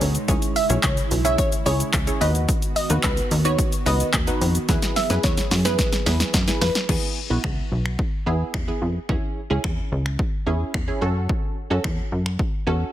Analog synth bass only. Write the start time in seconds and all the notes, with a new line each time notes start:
0.01 D2
0.29 C#2
0.70 B1
0.84 C#2
1.11 B1
1.66 C#2
1.94 C#2
2.21 D#2
2.90 D#2
3.04 C#2
3.31 D#2
3.86 C#2
4.14 D#2
4.41 F2
4.69 E2
5.10 F#2
5.24 E2
5.51 F#2
6.06 E2
6.34 F#2
6.61 F2
6.89 E2
7.30 B1
7.44 C#2
7.72 B1
8.26 E2
8.54 E2
8.82 F2
9.09 E2
9.50 C#2
9.64 E2
9.92 C#2
10.47 E2
10.74 E2
11.02 F#2
11.71 F#2
11.85 E2
12.12 F#2
12.67 E2